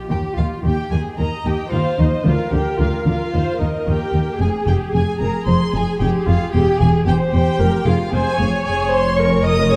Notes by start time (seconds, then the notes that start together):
0.10 D#2 D#3 G4 G5
0.37 D#2 D#3 F4 F5
0.64 D#2 D#3 G4 G5
0.91 D#2 D#3 G#4 G#5
1.18 D#2 D#3 A#4 D#5 A#5
1.45 D#2 D#3 G4 G5
1.71 D#2 D#3 F4 C5 F5
1.98 D#2 D#3 D#4 D#5
2.25 D2 D3 F4 A#4 F5
2.52 D2 D3 G4 G5
2.79 D2 D3 F4 F5
3.06 D2 D3 F4 F5
3.33 D#2 D#3 C5
3.60 D#2 D#3 D#4 A#4 D#5
3.86 D#2 D#3 G4 G5
4.13 D#2 D#3
4.39 F1 F2 G#4 G#5
4.67 F1 F2 G4 G5
4.94 F1 F2 G#4 G#5
5.20 F1 F2 A#4 A#5
5.47 F1 F2 C5 C6
5.73 F1 F2 G#4 G#5
6.00 F1 F2 G4 G5
6.27 F1 F2 F4 F5
6.53 E1 E2 G4 G5
6.80 E1 E2 G#4 G#5
7.06 E1 E2 G4 C5 G5
7.33 E1 E2 G4 G5
7.60 F1 F2 A#4
7.86 F1 F2 F4 G#4 F5
8.12 F1 F2 G#4 C5 G#5
8.38 F1 F2 C#5
8.66 F1 F2 G#4 G#5
8.91 C5 C6
9.18 A#4 C#5 C#6
9.45 D#5 D#6
9.71 G#4 C#5